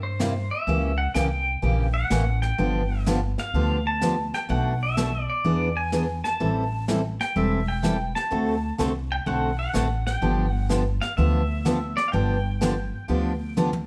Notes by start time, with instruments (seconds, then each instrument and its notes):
Already playing: upright bass G2
0.03 pedal steel guitar C5
0.19 steel-string acoustic guitar C3 G3 A#3 E4 G4, snare, hi-hat pedal
0.51 pedal steel guitar E5
0.67 upright bass C#2, steel-string acoustic guitar C#3 E3 A#3 C#4 G4, brush sweep
0.98 pedal steel guitar F#5
1.14 upright bass C2, steel-string acoustic guitar C#3 E3 A#3 C#4 G4, pedal steel guitar G5, snare, hi-hat pedal
1.62 upright bass A#1, steel-string acoustic guitar C#3 E3 A#3 C#4 G4, brush sweep
1.94 pedal steel guitar F#5
2.10 upright bass A1, steel-string acoustic guitar C#3 E3 A#3 C#4 G4, snare, hi-hat pedal
2.42 pedal steel guitar G5, snare
2.58 upright bass G1, steel-string acoustic guitar D3 F3 B3 D4 G4, brush sweep
3.06 steel-string acoustic guitar D3 F3 B3 D4 G4, snare, hi-hat pedal
3.38 pedal steel guitar F5, snare
3.54 upright bass D2, steel-string acoustic guitar D3 F3 B3 D4 G4, brush sweep
3.87 pedal steel guitar A5
4.01 steel-string acoustic guitar D3 F3 B3 D4 G4, snare, hi-hat pedal
4.34 pedal steel guitar G5, snare
4.49 upright bass B1, steel-string acoustic guitar B2 F#3 A3 D4 F#4, pedal steel guitar F#5, brush sweep
4.83 pedal steel guitar E5
4.97 steel-string acoustic guitar B2 F#3 A3 D4 F#4, snare, hi-hat pedal
5.30 pedal steel guitar D5
5.44 upright bass E2, steel-string acoustic guitar E3 B3 D4 G#4, brush sweep
5.77 pedal steel guitar G#5
5.92 steel-string acoustic guitar E3 B3 D4 G#4, snare, hi-hat pedal
6.24 pedal steel guitar A5, snare
6.40 upright bass A1, steel-string acoustic guitar E3 G3 C4 E4 A4, brush sweep
6.88 steel-string acoustic guitar E3 G3 C4 E4 A4, snare, hi-hat pedal
7.20 pedal steel guitar G5, snare
7.36 upright bass E1, steel-string acoustic guitar E3 G3 C4 E4 A4, pedal steel guitar E5, brush sweep
7.68 pedal steel guitar G5
7.82 steel-string acoustic guitar E3 G3 C4 E4 A4, snare, hi-hat pedal
8.15 pedal steel guitar A5, snare
8.31 upright bass D2, steel-string acoustic guitar D3 A3 C4 F#4 A4, brush sweep
8.78 upright bass C2, steel-string acoustic guitar D3 A3 C4 F#4 A4, snare, hi-hat pedal
9.12 pedal steel guitar G5
9.26 upright bass B1, steel-string acoustic guitar D3 A3 C4 F#4 A4, pedal steel guitar F#5, brush sweep
9.59 pedal steel guitar F#5
9.73 upright bass A1, steel-string acoustic guitar D3 A3 C4 F#4 A4, snare, hi-hat pedal
10.07 pedal steel guitar G5, snare
10.22 upright bass G1, steel-string acoustic guitar D3 F3 B3 D4 G4, brush sweep
10.49 pedal steel guitar F#5
10.69 steel-string acoustic guitar D3 F3 B3 D4 G4, snare, hi-hat pedal
11.02 pedal steel guitar F5, snare
11.17 upright bass D2, steel-string acoustic guitar D3 F3 B3 D4 G4, pedal steel guitar E5, brush sweep
11.65 steel-string acoustic guitar D3 F3 B3 D4 G4, snare, hi-hat pedal
11.97 pedal steel guitar D5, snare
12.08 pedal steel guitar F5
12.12 upright bass G1, steel-string acoustic guitar D3 F3 B3 D4 G4, pedal steel guitar G5, brush sweep
12.61 steel-string acoustic guitar D3 F3 B3 D4 G4, snare, hi-hat pedal
13.08 upright bass D2, steel-string acoustic guitar D3 F3 B3 D4 G4, brush sweep
13.57 steel-string acoustic guitar D3 F3 B3 D4 G4, hi-hat pedal, high tom
13.73 high tom